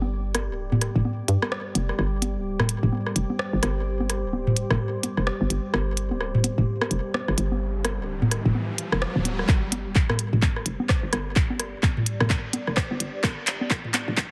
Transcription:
Already playing: G1 G3 G4 D5 D6
0.02 high conga
0.35 cross-stick, closed hi-hat, high conga
0.49 D1
0.72 mid tom, high conga
0.81 cross-stick, closed hi-hat
0.96 F1, mid tom
1.05 high conga
1.28 G2, closed hi-hat
1.42 cross-stick, high conga
1.52 C5, cross-stick
1.75 F1, closed hi-hat, high conga
1.89 cross-stick
1.99 G1, cross-stick
2.22 closed hi-hat, high conga
2.36 D1
2.60 cross-stick, mid tom, high conga
2.69 closed hi-hat
2.83 F1, mid tom
2.92 high conga
3.06 cross-stick
3.16 F1, closed hi-hat
3.30 high conga
3.39 cross-stick
3.53 G1
3.63 G1, cross-stick, closed hi-hat, high conga
4.00 high conga
4.10 cross-stick, closed hi-hat
4.24 D1
4.33 high conga
4.47 mid tom
4.57 closed hi-hat
4.71 F1, cross-stick, mid tom, high conga
5.03 closed hi-hat, high conga
5.17 F1, cross-stick
5.27 cross-stick
5.41 G1, high conga
5.50 G1, closed hi-hat
5.74 G1, cross-stick, riser, high conga
5.97 closed hi-hat
6.11 D1, high conga
6.21 cross-stick
6.35 mid tom
6.44 closed hi-hat, high conga
6.58 F1, mid tom
6.81 cross-stick, high conga
6.91 F1, closed hi-hat
7.14 cross-stick, high conga
7.28 G1, cross-stick
7.38 G1, closed hi-hat
7.52 high conga
7.85 cross-stick, closed hi-hat, high conga
7.99 D1
8.22 mid tom, high conga
8.31 cross-stick, closed hi-hat
8.45 F1, mid tom
8.55 high conga
8.78 closed hi-hat
8.92 F1, cross-stick, high conga
9.02 cross-stick
9.16 D1
9.25 closed hi-hat, high conga
9.39 cross-stick
9.49 G1, kick, cross-stick, clap
9.72 closed hi-hat, high conga
9.86 D1 D5
9.95 kick, clap
10.10 cross-stick, mid tom, high conga
10.19 closed hi-hat
10.33 F1, mid tom
10.42 kick, clap, high conga
10.56 cross-stick
10.66 F1, closed hi-hat
10.80 high conga
10.89 kick, cross-stick, clap
11.03 G1
11.13 G1, cross-stick, closed hi-hat, high conga
11.36 kick, clap
11.50 high conga
11.60 cross-stick, closed hi-hat
11.74 D1
11.83 kick, clap, high conga
11.97 mid tom
12.06 closed hi-hat
12.20 F1, cross-stick, mid tom, high conga
12.30 kick, clap
12.53 closed hi-hat, high conga
12.67 F1, cross-stick
12.77 kick, cross-stick, clap
12.91 G1, high conga
13.00 G1, closed hi-hat
13.24 G1, kick, cross-stick, clap, high conga
13.47 clap, closed hi-hat
13.61 D1, high conga
13.71 kick, cross-stick, clap
13.85 mid tom
13.94 clap, closed hi-hat, high conga
14.08 F1, mid tom
14.17 kick, clap

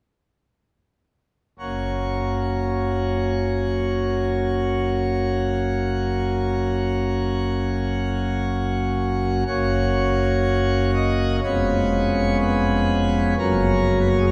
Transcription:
1.59 F#1 F#2 A#3 C#4 F#4
9.47 F#1 F#2 A#3 C#4 F#4 C#5
10.94 D#5
11.43 F1 F2 G#3 B3 C#4 C#5
12.41 B4
13.38 F#1 F#2 F#3 A#3 C#4 A#4
14.00 B4
14.09 A#4
14.18 G#4
14.27 A#4

